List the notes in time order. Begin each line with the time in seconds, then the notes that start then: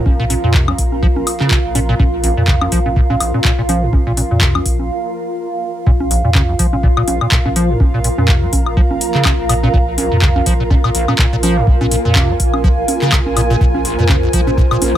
Already playing: F4 A#4 F5 A#5
0.06 A#1 A#2, kick, high conga
0.20 A#2
0.30 A#2, open hi-hat, high conga
0.44 F2 A#2
0.54 C3, kick, clap
0.68 A#3, high conga, high woodblock
0.78 A#1, kick, open hi-hat
0.92 high conga
1.02 F3, kick
1.16 A#1, high conga
1.27 open hi-hat, high woodblock
1.40 C#3, clap, high conga
1.51 C3, kick, clap
1.65 A#1
1.75 A#2, open hi-hat, high conga
1.89 A#2
1.99 A#1 A#2, kick, high conga
2.24 A#1, open hi-hat, high conga
2.37 F2 A#2
2.48 C#3, kick, clap
2.61 A#1, high conga, high woodblock
2.72 A#1 F3, kick, open hi-hat
2.86 A#2, high conga
2.96 A#2, kick
3.10 A#1 A#2, high conga
3.20 A#1, open hi-hat, high woodblock
3.34 A#2, high conga
3.45 A#2, kick, clap
3.58 A#1 A#2
3.69 F3, open hi-hat, high conga
3.83 G#2
3.93 A#1 A#2, kick, high conga
4.07 A#2
4.17 A#2, open hi-hat, high conga
4.31 F2 A#2
4.41 C3, kick, clap
4.55 A#3, high conga, high woodblock
4.66 A#1, kick, open hi-hat
4.79 high conga
5.86 A#1 A#2 F4 F5, kick
6.00 high conga
6.11 A#1, open hi-hat
6.15 A#4
6.24 F2 A#2
6.35 C#3, kick, clap, high conga
6.49 A#1
6.59 A#1 F3, kick, open hi-hat
6.73 A#2 A#5, high conga
6.83 A#2, kick
6.97 A#1 A#2, high woodblock
7.08 A#1, open hi-hat, high conga
7.21 A#2, high woodblock
7.32 A#2, kick, clap
7.45 A#1 A#2, high conga
7.56 F3, open hi-hat
7.70 G#2
7.80 A#1 A#2, kick, high conga
7.94 A#2
8.04 A#2, open hi-hat
8.18 F2 A#2, high conga
8.28 C3, kick, clap
8.42 A#3
8.53 A#1, kick, open hi-hat, high conga
8.66 high woodblock
8.77 F3, kick
8.90 A#1, high conga
9.01 open hi-hat
9.15 C#3, clap
9.25 C3, kick, clap, high conga, high woodblock
9.39 A#1
9.49 A#2, open hi-hat, high woodblock
9.63 A#2, high conga
9.74 A#1 A#2, kick
9.98 A#1, open hi-hat, high conga
10.12 F2 A#2
10.22 C#3, kick, clap
10.36 A#1, high conga
10.46 A#1 F3, kick, open hi-hat
10.60 A#2 G#5
10.70 A#2, kick, high conga
10.84 A#1 A#2, high woodblock
10.95 A#1, open hi-hat
11.08 A#2, high conga, high woodblock
11.19 A#2, kick, clap
11.33 A#1 A#2
11.43 F3, open hi-hat, high conga
11.57 G#2
11.67 A#1 A#2, kick
11.81 A#2, high conga
11.91 A#2, open hi-hat
12.05 F2 A#2
12.15 C3, kick, clap, high conga
12.29 A#3
12.40 A#1, kick, open hi-hat
12.54 high conga, high woodblock
12.64 F3, kick
12.78 A#1
12.88 open hi-hat, high conga
13.02 C#3, clap
13.12 C3, kick, clap, high woodblock
13.26 A#1, high conga
13.37 A#2, open hi-hat, high woodblock
13.50 A#2
13.61 A#1 A#2 C5, kick
13.74 high conga
13.85 A#1, open hi-hat
13.99 F2 A#2
14.09 C#3, kick, clap, high conga
14.23 A#1
14.33 A#1 F3, kick, open hi-hat
14.47 A#2 A#5, high conga
14.58 A#2, kick
14.71 A#1 A#2, high woodblock
14.82 A#1, open hi-hat, high conga